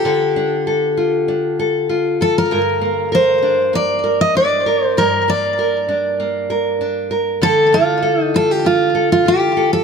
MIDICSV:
0, 0, Header, 1, 3, 480
1, 0, Start_track
1, 0, Key_signature, -2, "minor"
1, 0, Tempo, 614754
1, 37, Time_signature, 4, 2, 24, 8
1, 7682, End_track
2, 0, Start_track
2, 0, Title_t, "Steel-string acoustic guitar"
2, 0, Program_c, 0, 25
2, 0, Note_on_c, 0, 67, 77
2, 1724, Note_off_c, 0, 67, 0
2, 1733, Note_on_c, 0, 69, 83
2, 1848, Note_off_c, 0, 69, 0
2, 1859, Note_on_c, 0, 70, 82
2, 2417, Note_off_c, 0, 70, 0
2, 2457, Note_on_c, 0, 72, 92
2, 2927, Note_off_c, 0, 72, 0
2, 2930, Note_on_c, 0, 74, 90
2, 3285, Note_off_c, 0, 74, 0
2, 3288, Note_on_c, 0, 75, 100
2, 3406, Note_off_c, 0, 75, 0
2, 3409, Note_on_c, 0, 74, 100
2, 3784, Note_off_c, 0, 74, 0
2, 3784, Note_on_c, 0, 72, 100
2, 3888, Note_on_c, 0, 70, 99
2, 3897, Note_off_c, 0, 72, 0
2, 4129, Note_off_c, 0, 70, 0
2, 4134, Note_on_c, 0, 74, 92
2, 5533, Note_off_c, 0, 74, 0
2, 5801, Note_on_c, 0, 69, 108
2, 6044, Note_on_c, 0, 65, 92
2, 6045, Note_off_c, 0, 69, 0
2, 6418, Note_off_c, 0, 65, 0
2, 6418, Note_on_c, 0, 63, 92
2, 6526, Note_on_c, 0, 69, 94
2, 6533, Note_off_c, 0, 63, 0
2, 6645, Note_off_c, 0, 69, 0
2, 6645, Note_on_c, 0, 67, 90
2, 6763, Note_off_c, 0, 67, 0
2, 6764, Note_on_c, 0, 65, 80
2, 7094, Note_off_c, 0, 65, 0
2, 7122, Note_on_c, 0, 65, 80
2, 7242, Note_off_c, 0, 65, 0
2, 7248, Note_on_c, 0, 67, 98
2, 7594, Note_off_c, 0, 67, 0
2, 7597, Note_on_c, 0, 69, 88
2, 7682, Note_off_c, 0, 69, 0
2, 7682, End_track
3, 0, Start_track
3, 0, Title_t, "Nylon-string guitar"
3, 0, Program_c, 1, 24
3, 0, Note_on_c, 1, 62, 70
3, 0, Note_on_c, 1, 65, 57
3, 39, Note_on_c, 1, 50, 79
3, 44, Note_on_c, 1, 69, 64
3, 280, Note_off_c, 1, 62, 0
3, 283, Note_on_c, 1, 62, 69
3, 513, Note_off_c, 1, 69, 0
3, 522, Note_on_c, 1, 69, 68
3, 751, Note_off_c, 1, 65, 0
3, 760, Note_on_c, 1, 65, 65
3, 998, Note_off_c, 1, 62, 0
3, 1001, Note_on_c, 1, 62, 63
3, 1236, Note_off_c, 1, 69, 0
3, 1245, Note_on_c, 1, 69, 69
3, 1469, Note_off_c, 1, 65, 0
3, 1479, Note_on_c, 1, 65, 61
3, 1714, Note_off_c, 1, 69, 0
3, 1724, Note_on_c, 1, 69, 63
3, 1960, Note_off_c, 1, 69, 0
3, 1961, Note_on_c, 1, 43, 78
3, 1967, Note_on_c, 1, 70, 67
3, 2006, Note_off_c, 1, 65, 0
3, 2194, Note_off_c, 1, 62, 0
3, 2197, Note_on_c, 1, 58, 65
3, 2426, Note_off_c, 1, 70, 0
3, 2436, Note_on_c, 1, 70, 66
3, 2674, Note_on_c, 1, 62, 63
3, 2772, Note_off_c, 1, 50, 0
3, 2904, Note_off_c, 1, 58, 0
3, 2913, Note_on_c, 1, 58, 67
3, 3143, Note_off_c, 1, 70, 0
3, 3152, Note_on_c, 1, 70, 63
3, 3394, Note_off_c, 1, 62, 0
3, 3398, Note_on_c, 1, 62, 66
3, 3631, Note_off_c, 1, 70, 0
3, 3640, Note_on_c, 1, 70, 66
3, 3873, Note_off_c, 1, 43, 0
3, 3878, Note_off_c, 1, 70, 0
3, 3882, Note_on_c, 1, 43, 74
3, 3886, Note_on_c, 1, 70, 70
3, 4114, Note_off_c, 1, 58, 0
3, 4124, Note_on_c, 1, 58, 71
3, 4353, Note_off_c, 1, 70, 0
3, 4362, Note_on_c, 1, 70, 67
3, 4593, Note_off_c, 1, 62, 0
3, 4596, Note_on_c, 1, 62, 62
3, 4830, Note_off_c, 1, 58, 0
3, 4839, Note_on_c, 1, 58, 67
3, 5066, Note_off_c, 1, 70, 0
3, 5075, Note_on_c, 1, 70, 69
3, 5313, Note_off_c, 1, 62, 0
3, 5316, Note_on_c, 1, 62, 65
3, 5540, Note_off_c, 1, 70, 0
3, 5549, Note_on_c, 1, 70, 62
3, 5790, Note_on_c, 1, 50, 83
3, 5792, Note_off_c, 1, 70, 0
3, 5795, Note_on_c, 1, 69, 69
3, 5798, Note_off_c, 1, 43, 0
3, 5845, Note_off_c, 1, 58, 0
3, 6031, Note_off_c, 1, 62, 0
3, 6031, Note_on_c, 1, 62, 69
3, 6262, Note_off_c, 1, 69, 0
3, 6266, Note_on_c, 1, 69, 75
3, 6514, Note_on_c, 1, 65, 63
3, 6742, Note_off_c, 1, 62, 0
3, 6752, Note_on_c, 1, 62, 68
3, 6983, Note_off_c, 1, 69, 0
3, 6986, Note_on_c, 1, 69, 68
3, 7226, Note_off_c, 1, 65, 0
3, 7229, Note_on_c, 1, 65, 63
3, 7467, Note_off_c, 1, 69, 0
3, 7470, Note_on_c, 1, 69, 71
3, 7682, Note_off_c, 1, 50, 0
3, 7682, Note_off_c, 1, 62, 0
3, 7682, Note_off_c, 1, 65, 0
3, 7682, Note_off_c, 1, 69, 0
3, 7682, End_track
0, 0, End_of_file